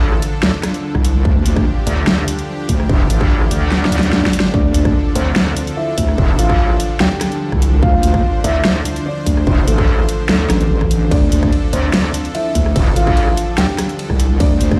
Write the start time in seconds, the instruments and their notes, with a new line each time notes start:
Already playing: wobble bass A1, supersaw synth D3 F3 D4 A4
0.13 cross-stick
0.22 closed hi-hat
0.43 wobble bass D2, snare
0.63 cross-stick, snare, closed hi-hat
0.74 closed hi-hat
0.95 wobble bass C2, kick, cross-stick
1.05 closed hi-hat
1.25 wobble bass D2, supersaw synth G4, kick
1.46 wobble bass D2, closed hi-hat
1.56 kick, cross-stick
1.87 wobble bass D2, closed hi-hat
2.07 snare
2.18 cross-stick
2.28 closed hi-hat
2.39 closed hi-hat
2.69 wobble bass D2, kick, closed hi-hat
2.80 cross-stick
2.89 wobble bass E1, kick
3.10 wobble bass A1, closed hi-hat
3.21 kick, cross-stick
3.41 cross-stick
3.51 wobble bass D2, closed hi-hat
3.72 snare, swell
3.85 snare
3.92 wobble bass D2, closed hi-hat
3.99 snare, closed hi-hat
4.13 snare
4.24 kick, snare
4.33 closed hi-hat
4.40 snare
4.54 wobble bass D2, felt piano D4 D5, supersaw synth A4, kick
4.74 wobble bass D2, closed hi-hat
4.85 kick, cross-stick
5.15 wobble bass D2, felt piano C4 C5, closed hi-hat
5.36 snare
5.47 cross-stick
5.57 closed hi-hat
5.67 closed hi-hat
5.77 felt piano E4 E5
5.98 wobble bass D2, kick, closed hi-hat
6.08 cross-stick
6.18 wobble bass E1, kick
6.39 wobble bass A1, felt piano F4 F5, closed hi-hat
6.50 kick, cross-stick
6.70 cross-stick
6.80 closed hi-hat
7.00 wobble bass D2, felt piano G4 G5, snare
7.21 cross-stick, snare, closed hi-hat
7.32 closed hi-hat
7.52 wobble bass C2, kick, cross-stick
7.62 closed hi-hat
7.83 wobble bass D2, felt piano F4 F5, supersaw synth C5, kick
8.03 wobble bass D2, closed hi-hat
8.14 kick, cross-stick
8.44 wobble bass D2, felt piano E4 E5, closed hi-hat
8.65 snare
8.76 cross-stick
8.85 closed hi-hat
8.96 closed hi-hat
9.06 felt piano D4 D5
9.26 wobble bass D2, kick, closed hi-hat
9.37 cross-stick
9.47 wobble bass E1, kick
9.67 wobble bass A1, felt piano A3 A4, closed hi-hat
9.78 kick, cross-stick
9.99 cross-stick
10.09 closed hi-hat
10.29 wobble bass D2, felt piano A3 A4, snare
10.50 wobble bass A1, cross-stick, snare, closed hi-hat
10.61 closed hi-hat
10.70 wobble bass A1
10.81 kick, cross-stick
10.91 closed hi-hat
11.11 wobble bass D2, felt piano D4 D5, supersaw synth A4, kick, ride
11.32 wobble bass D2, closed hi-hat
11.43 kick, cross-stick
11.53 ride
11.73 wobble bass D2, felt piano C4 C5, closed hi-hat
11.94 snare, ride
12.04 cross-stick
12.14 closed hi-hat
12.25 closed hi-hat
12.35 felt piano E4 E5, ride
12.55 wobble bass D2, kick, closed hi-hat
12.66 cross-stick
12.76 wobble bass E1, kick, ride
12.96 wobble bass A1, felt piano F4 F5, closed hi-hat
13.07 kick, cross-stick
13.17 ride
13.28 cross-stick
13.37 closed hi-hat
13.58 wobble bass D2, felt piano G4 G5, snare, ride
13.78 cross-stick, snare, closed hi-hat
13.89 closed hi-hat
13.99 ride
14.10 wobble bass C2, kick, cross-stick
14.20 closed hi-hat
14.40 wobble bass D2, felt piano D4 D5, supersaw synth C5, kick, ride
14.61 wobble bass D2, closed hi-hat
14.71 kick, cross-stick